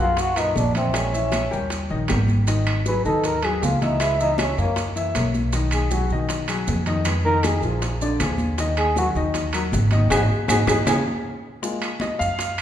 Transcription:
Already playing: upright piano F#3 F#4
0.00 upright bass F#2, trombone F4, upright piano F#5
0.17 trombone F#4, high bongo, high conga, high timbale, maracas
0.36 upright piano A#2 A#4 B4, trombone D#4, high bongo, high conga, high timbale, claves, maracas
0.55 upright bass A#1, trombone D4, high bongo, low bongo, high conga, maracas
0.75 upright piano E3 E4 E5, trombone C4, high bongo, high conga, high timbale, maracas
0.93 upright piano G#3 G#4 A#4, trombone C#4, high bongo, high conga, high timbale, claves, maracas
1.13 upright piano E3 E4 E5, high conga, maracas
1.32 high bongo, high conga, high timbale, claves, maracas
1.51 upright bass D#2, upright piano G3 G4 A#4, high bongo, maracas
1.70 high bongo, high conga, high timbale, maracas
1.90 upright bass A#1, upright piano D#3 D#4 D#5, high bongo, high conga
2.08 upright bass G#1, upright piano G3 G4 A#4, high bongo, low bongo, high conga, high timbale, low timbale, claves, maracas
2.28 high bongo, high conga, maracas
2.47 upright piano D#3 D#4 D#5, high bongo, high conga, high timbale, maracas
2.66 high conga, high timbale, claves
2.86 upright piano F#3 F#4 G#4, trombone B4, high bongo, high conga, maracas
3.05 upright bass D#2, upright piano D#3 D#4 D#5, trombone A4, high bongo, maracas
3.24 trombone A#4, high bongo, high conga, high timbale, maracas
3.43 upright piano F#3 F#4 G#4, trombone G#4, high bongo, high conga, high timbale, claves
3.62 upright bass C#2, trombone F4, high bongo, low bongo, high conga, low timbale, maracas
3.82 upright piano E3 E4 E5, trombone D#4, high bongo, high conga, high timbale, maracas
4.00 upright piano G#3 G#4 B4, trombone E4, high bongo, high timbale, claves, maracas
4.20 upright piano E3 E4 E5, trombone D#4, high conga, maracas
4.38 trombone C#4, high bongo, high conga, high timbale, claves, maracas
4.57 upright bass F#2, upright piano A#3 A#4 C#5, trombone A#3, high bongo, maracas
4.76 high bongo, high conga, high timbale, maracas
4.96 upright piano E3 E4 E5, high bongo, high conga, maracas
5.14 upright bass B1, upright piano A#3 A#4 C#5, high bongo, low bongo, high conga, high timbale, claves, maracas
5.34 high bongo, high conga, maracas
5.53 upright piano D#3 D#4 D#5, high bongo, high conga, high timbale, maracas
5.71 trombone G#4, high conga, high timbale, claves, maracas
5.91 upright piano F#3 F#4 G#4, trombone F#4, high bongo, high conga, maracas
6.10 upright bass B2, upright piano D#3 D#4 D#5, high bongo, maracas
6.29 high bongo, high conga, high timbale, maracas
6.48 upright piano F#3 F#4 G#4, high bongo, high conga, high timbale, claves, maracas
6.67 upright bass F2, high bongo, low bongo, high conga, maracas
6.86 upright piano D#3 D#4 D#5, high bongo, high conga, high timbale, maracas
7.05 upright piano G#3 G#4 B4, high bongo, high conga, high timbale, claves, maracas
7.25 upright piano D#3 D#4 D#5, trombone A#4, high conga
7.43 trombone G#4, high bongo, high conga, high timbale, claves, maracas
7.62 upright bass A#1, upright piano F3 F4 G#4, high bongo, maracas
7.82 high bongo, high conga, high timbale, maracas
8.01 upright piano D3 D4 D5, high bongo, high conga, maracas
8.20 upright bass D#2, upright piano F3 F4 G#4, high bongo, low bongo, high conga, high timbale, claves, maracas
8.38 high bongo, high conga, maracas
8.58 upright piano D#3 D#4 D#5, high bongo, high conga, high timbale, maracas
8.77 trombone G#4, high conga, high timbale, claves
8.96 upright piano F#3 F#4 A#4, trombone F#4, high bongo, high conga, maracas
9.15 upright bass D#2, upright piano D#3 D#4 D#5, high bongo, maracas
9.34 high bongo, high conga, high timbale, maracas
9.53 upright piano F#3 F#4 A#4, high bongo, high conga, high timbale, claves, maracas
9.72 upright bass G#1, high bongo, low bongo, high conga, maracas
9.91 upright piano D#3 D#4 D#5, high bongo, high conga, high timbale, maracas
10.10 upright bass G#1, upright piano D#4 F#4 G#4, trombone G#4, low bongo, high conga, high timbale, claves, maracas
10.48 upright bass G#1, upright piano D#4 F#4 G#4, trombone G#4, low bongo, high conga, high timbale, claves, maracas
10.67 upright bass G#1, upright piano D#4 F#4 G#4, trombone G#4, low bongo, high conga, high timbale, claves, maracas
10.86 upright bass C#2, upright piano C#4 F4 G#4, trombone G#4, low bongo, high conga, high timbale, claves, maracas
11.62 upright piano G#3 A#3 F4, high bongo, high conga, maracas
11.82 high bongo, high conga, high timbale, claves, maracas
12.00 upright piano D#5, high bongo, high conga, high timbale, maracas
12.19 upright bass F#2, upright piano F5, high bongo, high conga, maracas
12.38 high bongo, high conga, high timbale, maracas
12.58 high conga, high timbale, claves

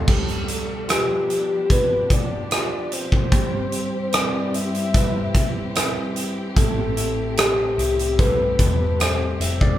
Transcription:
Already playing: grand piano A3 F5
0.08 string section B2 F3 D4 G4, grand piano G3, soft synth lead A4, kick, crash
0.28 closed hi-hat
0.48 closed hi-hat
0.88 grand piano F4 G4 B4, soft synth lead G4, cross-stick, closed hi-hat
1.30 closed hi-hat
1.70 grand piano F4 G4 B4, soft synth lead B4, kick, closed hi-hat
2.10 soft synth lead D5, kick, closed hi-hat
2.51 grand piano F4 G4 D5, cross-stick, closed hi-hat
2.92 soft synth lead C5, closed hi-hat
3.12 kick
3.32 string section G2 E3 G3 C4, grand piano G3, kick, closed hi-hat
3.72 closed hi-hat
4.12 grand piano C4 E4 B4, soft synth lead D5, cross-stick, closed hi-hat
4.54 soft synth lead E5, closed hi-hat
4.75 closed hi-hat
4.94 grand piano C4 E4 B4, kick, closed hi-hat
5.35 kick, closed hi-hat
5.75 grand piano C4 E4 B4, cross-stick, closed hi-hat
6.16 closed hi-hat
6.56 fingered electric bass A1, clean electric guitar A2, string section A3 C4, grand piano A3, soft synth lead A4, kick, closed hi-hat
6.97 clean electric guitar E4, closed hi-hat
7.37 grand piano G4 A4 C5, soft synth lead G4, clean electric guitar A4, cross-stick, closed hi-hat
7.78 fingered electric bass C2, clean electric guitar E4, closed hi-hat
7.99 closed hi-hat
8.18 clean electric guitar G3, grand piano C4 G4 A4, soft synth lead B4, kick, closed hi-hat
8.59 fingered electric bass E2, clean electric guitar A4, kick, closed hi-hat
9.00 clean electric guitar E4, grand piano G4 A4 C5, soft synth lead C5, cross-stick, closed hi-hat
9.40 fingered electric bass F1, clean electric guitar C4, soft synth lead E5, closed hi-hat
9.61 soft synth lead D5, kick

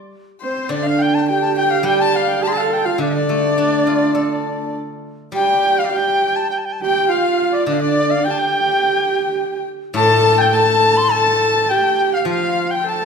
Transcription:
Already playing: guzheng G3
0.41 horsehead fiddle C4, erhu C5, dizi C5
0.69 guzheng D3, horsehead fiddle D4, erhu D5, dizi D5
0.83 erhu F5, dizi F5
0.99 erhu G5, dizi G5
1.15 dizi A5
1.28 horsehead fiddle G4, erhu G5, dizi G5
1.42 dizi A5
1.56 horsehead fiddle G4, dizi G5, erhu G5
1.70 dizi F5
1.83 guzheng G3, dizi G5, erhu G5
1.88 horsehead fiddle G4
2.00 dizi A5, erhu A5
2.15 dizi F5, erhu F5
2.28 dizi G5
2.43 horsehead fiddle A4, dizi A5, erhu A5
2.48 erhu C6
2.54 dizi F5, erhu A5
2.60 erhu F5
2.72 dizi G5, erhu G5
2.85 horsehead fiddle F4, dizi F5, erhu F5
2.98 guzheng D3, horsehead fiddle D4, dizi D5, erhu D5
3.29 guzheng A3
3.58 guzheng D4
3.87 guzheng F4
4.15 guzheng A4
5.32 guzheng G3, horsehead fiddle G4, dizi G5, erhu G5
5.79 dizi F5, erhu F5
5.85 erhu D5
5.89 erhu F5, dizi G5
5.94 horsehead fiddle G4, erhu G5
6.36 dizi A5
6.50 dizi G5
6.58 dizi A5
6.65 dizi G5
6.73 dizi A5
6.81 horsehead fiddle G4, dizi G5
6.86 erhu G5
7.08 horsehead fiddle F4, dizi F5, erhu F5
7.52 dizi D5
7.56 erhu D5
7.66 guzheng D3, horsehead fiddle D4, dizi D5, erhu D5
7.74 dizi F5
7.81 horsehead fiddle D4, dizi D5, erhu D5
8.10 dizi F5
8.24 horsehead fiddle G4, dizi G5, erhu G5
8.31 erhu A5
8.38 erhu G5
9.94 guzheng A2, horsehead fiddle A4, erhu A5
9.98 dizi A5
10.38 erhu G5, dizi G5
10.53 horsehead fiddle A4, erhu A5, dizi A5
10.97 dizi C6
11.11 horsehead fiddle A4, erhu A5, dizi A5
11.69 horsehead fiddle G4, dizi G5, erhu G5
12.14 dizi F5, erhu F5
12.25 guzheng F3, horsehead fiddle F4
12.30 dizi F5, erhu F5
12.71 dizi G5, erhu G5
12.85 horsehead fiddle A4, dizi A5, erhu A5

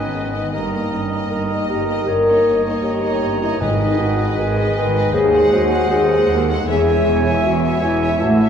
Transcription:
Already playing: double bass section G#1, cello section G#2, harp G#2 G#3 D#4 G#4 B4 D#5 B5, bassoon D#3, viola section B3, french horn section C#4, violin section B4 D#5, clarinet B4, oboe D#5, flute G#5
0.06 harp D#3
0.15 double bass section G#1, cello section G#2, harp G#3
0.33 harp G#3, french horn section B3, viola section B3, violin section B4 D#5
0.44 harp D#3
0.53 double bass section G1, harp G2, cello section G2, bassoon D#3, viola section A#3, french horn section A#3, clarinet A#4, violin section D#5, oboe D#5, flute A#5
0.63 harp G3
0.72 viola section A#3, harp A#3, violin section D#5
0.82 harp D#4
0.92 double bass section G1, cello section G2, french horn section C#4, harp A#4
1.01 harp D#4
1.10 viola section A#3, harp D#5, violin section D#5
1.20 harp A#5
1.30 double bass section G1, cello section G2, bassoon D#3, french horn section D#4, clarinet A#4, oboe D#5, harp D#5, flute A#5
1.40 harp A#4
1.49 viola section A#3, harp D#4, violin section D#5
1.60 harp G3
1.68 double bass section G1, cello section G2, bassoon D#3, harp A#3, french horn section G4, clarinet A#4, oboe D#5, flute A#5
1.79 harp G3
1.88 viola section A#3, harp A#3, violin section D#5
1.98 harp G3
2.06 double bass section G1, harp G2, cello section G2, bassoon D#3, french horn section A#4, clarinet C#5, oboe D#5, flute A#5
2.17 harp G3
2.26 viola section A#3, harp C#4, violin section C#5 D#5
2.36 harp D#4
2.46 double bass section G1, cello section G2, harp A#4
2.56 harp C#5
2.65 viola section A#3, french horn section D#4, violin section C#5 D#5, harp D#5
2.75 harp A#5
2.83 double bass section G1, cello section G2, bassoon D#3, french horn section G4, clarinet C#5, harp D#5, oboe D#5, flute A#5
2.94 harp C#5
3.03 viola section A#3, harp D#4, violin section C#5 D#5
3.14 harp G3
3.22 double bass section G1, cello section G2, harp C#4
3.32 harp G3
3.41 viola section A#3, harp C#4, french horn section E4, violin section C#5 D#5
3.52 harp G3
3.60 double bass section G#1, harp G#2, timpani G#2, cello section G#2, bassoon D#3, viola section G#3, french horn section D#4, violin section B4 D#5, clarinet B4, oboe D#5, flute G#5
3.71 harp D#3
3.79 viola section G#3, harp B3, violin section B4 D#5
3.90 harp D#4
3.98 double bass section G#1, cello section G#2, french horn section F#4, harp G#4
4.09 harp B4
4.18 viola section G#3, violin section B4 D#5, harp D#5
4.29 harp G#5
4.36 double bass section G#1, cello section G#2, bassoon D#3, french horn section G#4, clarinet B4, oboe D#5, harp D#5, flute G#5
4.48 harp B4
4.55 viola section G#3, harp D#4, violin section B4 D#5
4.67 harp D#3
4.75 double bass section G#1, cello section G#2, bassoon D#3, harp B3, clarinet B4, french horn section B4, oboe D#5, flute G#5
4.86 harp D#3
4.95 viola section G#3, harp B3, violin section B4 D#5
5.05 harp D#3
5.14 double bass section D#2, cello section D#2, harp D#3, bassoon F#3, french horn section G#4, clarinet C5, oboe D#5, flute G#5
5.24 harp D#4
5.33 viola section G#3, harp C4, violin section C5 F#5
5.43 harp F#4
5.52 double bass section D#2, cello section D#2, bassoon F#3, french horn section F#4, harp G#4, clarinet C5, oboe D#5, flute G#5
5.62 harp C5
5.71 viola section G#3, violin section C5 F#5, harp F#5
5.81 harp G#5
5.90 double bass section D#2, cello section D#2, bassoon F#3, french horn section G#4, clarinet C5, oboe D#5, harp F#5, flute G#5
6.01 harp C5
6.09 viola section G#3, harp F#4, violin section C5 F#5
6.19 harp D#4
6.28 cello section D#2, double bass section D#2, harp C4
6.39 harp D#4
6.48 viola section G#3, harp C4, french horn section A4, violin section C5 F#5
6.58 harp D#4
6.67 double bass section E1, cello section E2, harp E3, bassoon E3, viola section G#3, french horn section G#4, clarinet C#5, violin section C#5 E5, oboe E5, flute G#5
6.77 harp C#4
6.86 viola section G#3, harp E4, violin section C#5 E5
6.96 harp G#4
7.05 double bass section E1, cello section E2, harp C#5
7.15 harp E5
7.24 viola section G#3, french horn section E4, violin section C#5 E5, harp G#5
7.34 harp C#6
7.43 double bass section E1, cello section E2, french horn section F#4, harp G#5
7.53 harp E5
7.63 viola section G#3, harp G#4, violin section C#5 E5
7.71 harp C#4
7.81 double bass section E1, cello section E2, bassoon E3, harp E4, french horn section E4, clarinet C#5, oboe E5, flute G#5
7.91 harp C#4
8.01 viola section G#3, harp E4, violin section C#5 E5
8.10 harp C#4
8.20 double bass section A1, harp A2, cello section A2, bassoon E3, french horn section F#4, clarinet C#5, oboe E5, flute A5
8.30 harp E3
8.40 viola section A3, harp C#4, violin section C#5 E5

